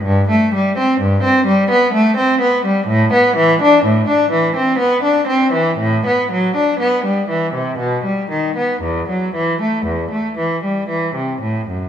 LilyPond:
\new Staff \with { instrumentName = "Cello" } { \clef bass \time 3/4 \key a \dorian \tempo 4 = 60 g,16 a16 g16 c'16 g,16 c'16 g16 b16 a16 c'16 b16 g16 | a,16 b16 e16 d'16 a,16 d'16 e16 c'16 b16 d'16 c'16 e16 | a,16 b16 fis16 d'16 b16 g16 e16 c16 b,16 g16 dis16 b16 | e,16 fis16 e16 a16 e,16 a16 e16 g16 e16 c16 a,16 fis,16 | }